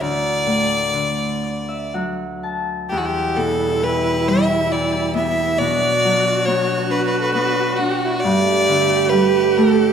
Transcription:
0.00 2.95 D2 medium
0.00 1.72 E4 medium
0.00 1.93 D5 loud
0.46 1.00 A2 soft
0.94 2.95 D3 soft
1.43 3.28 D5 medium
1.68 3.41 E5 soft
1.94 2.95 F#3 soft
1.94 3.55 F#5 soft
2.43 3.88 A5 soft
2.89 5.64 E2 medium
2.89 5.58 E2 medium
2.89 8.20 B2 medium
2.89 5.58 G3 medium
2.89 5.65 E4 medium
2.89 2.99 G4 medium
2.97 3.07 F#4 medium
3.05 3.39 G4 medium
3.37 5.58 B2 soft
3.37 3.85 A4 medium
3.82 4.70 E3 soft
3.82 4.30 B4 medium
4.27 5.64 G3 soft
4.27 4.74 E5 medium
4.71 5.64 E3 soft
4.71 5.15 D5 medium
5.15 6.47 B3 medium
5.15 5.60 E5 medium
5.58 8.27 B2 medium
5.58 8.21 F#3 medium
5.58 6.47 D5 loud
5.63 8.22 D4 medium
5.63 8.25 F#4 loud
6.05 8.27 F#3 soft
6.45 7.34 B3 medium
6.45 6.92 C#5 medium
6.90 7.78 D4 soft
6.90 7.05 B4 medium
7.03 7.20 B4 medium
7.03 7.07 C#5 medium
7.19 7.22 A4 medium
7.19 7.34 B4 medium
7.34 9.93 B3 medium
7.34 7.78 B4 medium
7.76 9.93 D4 medium
7.76 7.91 F#4 medium
7.90 8.06 F#4 medium
7.90 7.92 G4 soft
8.05 8.08 E4 medium
8.05 8.21 F#4 medium
8.20 9.93 G4 loud
8.20 9.11 D5 loud
8.24 9.93 G2 medium
8.24 9.93 D3 medium
8.24 9.93 A3 medium
8.68 9.93 D3 soft
9.10 9.93 G3 medium
9.10 9.58 B4 medium
9.57 9.93 A3 medium
9.57 9.93 A4 medium

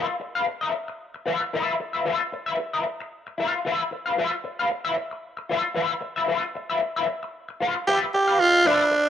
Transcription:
0.00 0.15 F4 medium
0.08 muted clean electric guitar stroke soft
0.20 muted clean electric guitar stroke soft
0.35 0.46 F4 soft
0.35 0.47 B4 medium
0.35 0.47 F5 medium
0.48 muted clean electric guitar stroke soft
0.61 0.72 F4 soft
0.61 0.73 B4 medium
0.61 0.74 E5 medium
0.74 muted clean electric guitar stroke soft
0.88 muted clean electric guitar stroke soft
1.14 muted clean electric guitar stroke soft
1.26 1.43 F4 medium
1.26 1.43 B4 medium
1.26 1.41 E5 medium
1.42 muted clean electric guitar stroke soft
1.53 1.74 F4 medium
1.53 1.75 B4 medium
1.53 1.75 E5 medium
1.80 muted clean electric guitar stroke soft
1.93 2.04 F4 soft
1.93 2.04 B4 soft
1.93 2.05 E5 soft
2.05 2.23 F4 medium
2.05 2.21 B4 medium
2.05 2.19 E5 medium
2.21 muted clean electric guitar stroke soft
2.32 muted clean electric guitar stroke soft
2.46 2.57 F4 soft
2.46 2.59 B4 medium
2.46 2.58 E5 medium
2.59 muted clean electric guitar stroke soft
2.73 2.84 F4 soft
2.73 2.85 B4 medium
2.73 2.86 E5 medium
2.85 muted clean electric guitar stroke soft
3.00 muted clean electric guitar stroke soft
3.27 muted clean electric guitar stroke soft
3.38 3.59 F4 medium
3.38 3.54 B4 medium
3.38 3.53 F5 medium
3.53 muted clean electric guitar stroke soft
3.65 3.82 F4 medium
3.65 3.82 B4 medium
3.65 3.83 E5 medium
3.91 muted clean electric guitar stroke soft
4.06 4.17 F4 soft
4.06 4.17 B4 medium
4.06 4.17 F5 medium
4.18 4.35 F4 medium
4.18 4.32 B4 medium
4.18 4.31 E5 medium
4.32 muted clean electric guitar stroke soft
4.44 muted clean electric guitar stroke soft
4.59 4.69 F4 medium
4.59 4.70 B4 medium
4.59 4.70 F5 medium
4.71 muted clean electric guitar stroke soft
4.85 4.95 F4 medium
4.85 4.96 B4 medium
4.85 4.97 E5 medium
4.97 muted clean electric guitar stroke soft
5.11 muted clean electric guitar stroke soft
5.37 muted clean electric guitar stroke soft
5.49 5.66 F4 medium
5.49 5.64 B4 medium
5.49 5.62 E5 medium
5.63 muted clean electric guitar stroke soft
5.74 5.92 F4 medium
5.74 5.93 B4 medium
5.74 5.93 E5 medium
6.01 muted clean electric guitar stroke soft
6.16 6.26 F4 soft
6.16 6.27 B4 soft
6.16 6.27 E5 medium
6.28 6.45 F4 medium
6.28 6.43 B4 medium
6.28 6.42 E5 medium
6.43 muted clean electric guitar stroke soft
6.55 muted clean electric guitar stroke soft
6.70 6.81 F4 medium
6.70 6.81 B4 medium
6.70 6.80 E5 medium
6.82 muted clean electric guitar stroke soft
6.96 7.07 F4 medium
6.96 7.08 B4 medium
6.96 7.09 E5 medium
7.08 muted clean electric guitar stroke soft
7.23 muted clean electric guitar stroke soft
7.49 muted clean electric guitar stroke soft
7.60 7.77 F4 medium
7.60 7.76 B4 medium
7.60 7.76 F5 medium
7.76 muted clean electric guitar stroke soft
7.87 8.04 F4 medium
7.87 7.99 G4 medium
7.87 8.04 B4 medium
7.87 8.05 E5 medium
8.14 8.41 G4 medium
8.14 muted clean electric guitar stroke soft
8.28 8.39 F4 soft
8.28 8.39 B4 medium
8.28 8.38 F5 medium
8.40 8.68 F4 loud
8.65 9.09 D4 loud
8.65 8.82 F4 medium
8.65 8.82 B4 loud
8.65 8.83 E5 medium
8.91 muted clean electric guitar stroke soft
9.06 muted clean electric guitar stroke soft

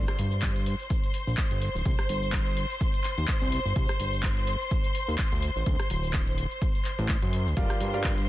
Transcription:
0.00 7.56 C5 medium
0.00 7.56 C6 medium
0.08 cross-stick medium
0.08 closed hi-hat medium
0.08 shaker soft
0.19 0.75 G2 medium
0.19 open hi-hat loud
0.32 closed hi-hat soft
0.32 shaker medium
0.42 kick loud
0.42 clap loud
0.42 closed hi-hat medium
0.42 shaker medium
0.56 closed hi-hat medium
0.56 shaker soft
0.66 open hi-hat loud
0.80 closed hi-hat soft
0.80 shaker medium
0.90 kick loud
0.90 closed hi-hat medium
0.90 shaker medium
1.03 closed hi-hat medium
1.03 shaker soft
1.14 open hi-hat loud
1.27 1.36 A#1 medium
1.27 closed hi-hat soft
1.27 shaker medium
1.37 kick loud
1.37 clap loud
1.37 closed hi-hat medium
1.37 shaker medium
1.51 1.69 G1 medium
1.51 closed hi-hat medium
1.51 shaker soft
1.62 open hi-hat loud
1.75 1.83 D1 medium
1.75 shaker medium
1.85 1.96 C2 loud
1.85 kick loud
1.85 closed hi-hat medium
1.85 shaker medium
1.99 cross-stick medium
1.99 closed hi-hat medium
1.99 shaker soft
2.09 2.66 G1 medium
2.09 open hi-hat loud
2.23 closed hi-hat soft
2.23 shaker medium
2.33 kick loud
2.33 clap loud
2.33 closed hi-hat medium
2.33 shaker medium
2.46 closed hi-hat medium
2.46 shaker soft
2.57 open hi-hat loud
2.70 closed hi-hat soft
2.70 shaker medium
2.81 kick loud
2.81 closed hi-hat medium
2.81 shaker medium
2.94 closed hi-hat medium
2.94 shaker soft
3.04 clap soft
3.04 open hi-hat loud
3.18 3.26 D#2 medium
3.18 closed hi-hat soft
3.18 shaker medium
3.28 kick loud
3.28 clap loud
3.28 closed hi-hat medium
3.28 shaker medium
3.41 3.60 C2 medium
3.41 closed hi-hat medium
3.41 shaker soft
3.52 open hi-hat loud
3.65 3.74 G1 medium
3.65 shaker medium
3.76 3.86 C2 loud
3.76 kick loud
3.76 closed hi-hat medium
3.76 shaker soft
3.89 cross-stick medium
3.89 closed hi-hat soft
3.89 shaker soft
4.00 4.56 G1 medium
4.00 open hi-hat loud
4.13 closed hi-hat soft
4.13 shaker medium
4.23 kick loud
4.23 clap loud
4.23 closed hi-hat medium
4.23 shaker medium
4.37 closed hi-hat medium
4.37 shaker soft
4.47 open hi-hat loud
4.61 closed hi-hat soft
4.61 shaker medium
4.71 kick loud
4.71 closed hi-hat medium
4.71 shaker medium
4.84 closed hi-hat soft
4.84 shaker soft
4.95 open hi-hat loud
5.08 5.17 D#2 medium
5.08 closed hi-hat soft
5.08 shaker medium
5.18 kick loud
5.18 clap loud
5.18 closed hi-hat medium
5.18 shaker medium
5.32 5.50 D2 medium
5.32 closed hi-hat soft
5.32 shaker soft
5.43 open hi-hat loud
5.56 5.64 A1 medium
5.56 shaker medium
5.66 5.77 D2 loud
5.66 kick loud
5.66 closed hi-hat medium
5.66 shaker medium
5.80 cross-stick medium
5.80 closed hi-hat soft
5.80 shaker soft
5.90 6.47 D1 medium
5.90 open hi-hat loud
6.03 closed hi-hat soft
6.03 shaker medium
6.13 kick loud
6.13 clap loud
6.13 closed hi-hat medium
6.13 shaker medium
6.27 closed hi-hat medium
6.27 shaker soft
6.38 open hi-hat loud
6.51 closed hi-hat soft
6.51 shaker medium
6.62 kick loud
6.62 closed hi-hat medium
6.62 shaker medium
6.75 closed hi-hat soft
6.75 shaker soft
6.85 clap soft
6.85 open hi-hat loud
6.99 7.17 A1 loud
6.99 closed hi-hat soft
6.99 shaker medium
7.09 kick loud
7.09 clap loud
7.09 closed hi-hat medium
7.09 shaker medium
7.22 7.48 F#2 medium
7.22 closed hi-hat medium
7.22 shaker soft
7.33 open hi-hat loud
7.46 7.55 D2 loud
7.46 shaker medium
7.57 7.67 G1 loud
7.57 7.91 G3 medium
7.57 7.91 F4 medium
7.57 7.91 G4 medium
7.57 7.91 A#4 medium
7.57 8.29 C5 medium
7.57 7.91 D5 medium
7.57 7.91 F5 medium
7.57 8.29 C6 medium
7.57 kick loud
7.57 closed hi-hat medium
7.57 shaker medium
7.70 cross-stick medium
7.70 closed hi-hat soft
7.70 shaker soft
7.81 8.29 G2 medium
7.81 open hi-hat loud
7.94 8.10 G3 medium
7.94 8.10 F4 medium
7.94 8.10 G4 medium
7.94 8.10 A#4 medium
7.94 8.10 D5 medium
7.94 8.10 F5 medium
7.94 closed hi-hat soft
7.94 shaker medium
8.04 kick loud
8.04 clap loud
8.04 closed hi-hat medium
8.04 shaker medium
8.18 closed hi-hat medium
8.18 shaker soft

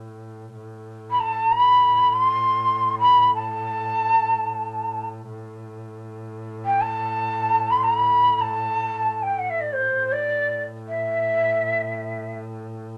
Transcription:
0.00 0.54 A2 medium
0.55 5.28 A2 medium
1.10 1.21 B5 medium
1.20 1.53 A5 medium
1.51 2.13 B5 medium
2.12 2.98 C6 medium
2.99 3.31 B5 medium
3.35 5.07 A5 medium
5.29 9.96 A2 medium
6.66 6.83 G5 medium
6.81 7.72 A5 medium
7.71 7.78 B5 medium
7.77 7.84 C6 medium
7.83 7.95 A#5 medium
7.95 8.42 B5 medium
8.41 9.24 A5 medium
9.22 9.40 G5 medium
9.39 9.51 F#5 medium
9.50 9.62 E5 medium
9.61 9.74 D5 medium
9.73 10.14 C5 medium
9.97 12.98 A2 medium
10.12 10.64 D5 medium
10.88 12.36 E5 medium

